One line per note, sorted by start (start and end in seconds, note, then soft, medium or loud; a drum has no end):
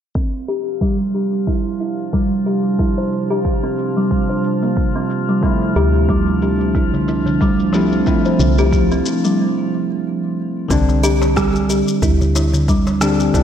0.15 10.67 C3 medium
0.15 9.39 F3 medium
0.15 5.39 G3 medium
0.15 0.47 C4 medium
0.15 5.39 D4 medium
0.15 9.39 F4 medium
0.15 5.39 G4 medium
0.15 kick medium
0.15 shaker soft
0.34 shaker soft
0.48 0.80 G4 medium
0.48 shaker medium
0.67 shaker soft
0.81 1.13 G3 medium
0.81 kick medium
0.81 shaker soft
1.00 shaker soft
1.14 1.32 G4 medium
1.14 shaker medium
1.33 shaker soft
1.47 1.79 E4 medium
1.47 kick medium
1.47 shaker soft
1.66 shaker soft
1.80 1.91 E4 medium
1.80 shaker medium
1.99 shaker soft
2.13 2.45 G3 medium
2.13 kick medium
2.13 shaker soft
2.32 shaker soft
2.46 2.64 G4 medium
2.46 shaker medium
2.65 shaker soft
2.79 2.96 E4 medium
2.79 kick loud
2.79 shaker soft
2.98 3.12 C5 medium
2.98 shaker soft
3.12 shaker medium
3.31 3.39 G4 medium
3.31 shaker soft
3.45 kick loud
3.45 shaker soft
3.63 3.95 C4 medium
3.63 shaker soft
3.78 shaker medium
3.97 4.10 G3 medium
3.97 shaker soft
4.11 kick medium
4.11 shaker soft
4.29 4.43 C5 medium
4.29 shaker soft
4.44 shaker medium
4.63 4.71 A#3 medium
4.63 shaker soft
4.77 kick loud
4.77 shaker soft
4.95 5.27 C4 medium
4.95 shaker soft
5.10 shaker medium
5.29 5.43 G3 medium
5.29 shaker soft
5.41 7.70 F3 medium
5.41 10.67 F3 medium
5.41 7.70 A3 medium
5.41 10.67 A3 medium
5.41 5.75 C4 medium
5.41 7.71 C4 medium
5.41 10.67 D4 medium
5.41 kick loud
5.41 shaker soft
5.45 7.72 E4 medium
5.61 darbuka ka soft
5.61 shaker soft
5.76 6.76 D2 medium
5.76 6.08 G4 loud
5.76 shaker medium
5.95 shaker soft
6.09 6.41 G3 loud
6.09 kick loud
6.09 shaker soft
6.28 shaker soft
6.42 6.60 G4 medium
6.42 shaker medium
6.61 shaker soft
6.75 8.03 C2 medium
6.75 7.07 E4 medium
6.75 kick medium
6.75 darbuka ka soft
6.75 shaker soft
6.94 darbuka dum medium
6.94 shaker soft
7.08 7.19 E4 medium
7.08 darbuka ka medium
7.08 shaker medium
7.26 darbuka dum medium
7.26 shaker soft
7.41 7.73 G3 loud
7.41 kick loud
7.41 shaker soft
7.60 shaker soft
7.73 7.90 F3 medium
7.73 7.90 A3 medium
7.73 7.90 C4 medium
7.73 7.91 E4 medium
7.73 7.92 G4 medium
7.73 darbuka ka soft
7.73 darbuka tek medium
7.73 shaker medium
7.92 shaker soft
8.06 8.31 F3 medium
8.06 8.31 A3 medium
8.06 8.31 C4 medium
8.06 8.24 E4 medium
8.06 8.32 E4 medium
8.06 kick loud
8.06 shaker soft
8.25 8.39 C5 medium
8.25 darbuka ka soft
8.25 shaker soft
8.39 9.02 C2 medium
8.39 darbuka tek soft
8.39 darbuka dum medium
8.39 shaker medium
8.58 8.67 G4 loud
8.58 shaker soft
8.73 kick loud
8.73 shaker soft
8.91 9.23 C4 medium
8.91 shaker soft
9.06 shaker medium
9.24 9.38 G3 medium
9.24 shaker soft
10.68 11.83 C2 loud
10.68 12.97 D3 medium
10.68 12.97 G3 medium
10.68 11.02 C4 medium
10.68 12.98 C4 medium
10.68 12.99 D4 medium
10.68 kick loud
10.68 shaker soft
10.89 darbuka ka soft
10.89 darbuka tek soft
10.89 shaker soft
11.04 11.35 G4 loud
11.04 shaker medium
11.22 darbuka tek medium
11.22 shaker soft
11.36 11.68 G3 medium
11.36 kick loud
11.36 cross-stick medium
11.36 shaker soft
11.55 shaker soft
11.70 11.87 G4 medium
11.70 shaker medium
11.88 shaker soft
12.02 13.31 D2 medium
12.02 12.34 E4 medium
12.02 kick medium
12.02 darbuka ka soft
12.02 shaker soft
12.21 darbuka dum medium
12.21 shaker soft
12.36 12.46 E4 medium
12.36 darbuka ka medium
12.36 darbuka tek medium
12.36 shaker medium
12.53 darbuka dum medium
12.53 shaker soft
12.68 13.00 G3 medium
12.68 kick loud
12.68 shaker soft
12.87 darbuka tek medium
12.87 shaker soft
13.00 13.17 D3 medium
13.00 13.17 G3 medium
13.00 13.18 C4 medium
13.00 13.18 D4 medium
13.00 13.19 G4 medium
13.00 cross-stick medium
13.00 darbuka ka soft
13.00 shaker medium
13.20 shaker soft
13.34 13.43 C2 loud
13.34 13.43 D3 medium
13.34 13.43 G3 medium
13.34 13.43 C4 medium
13.34 13.43 D4 medium
13.34 13.43 E4 medium
13.34 kick loud
13.34 shaker soft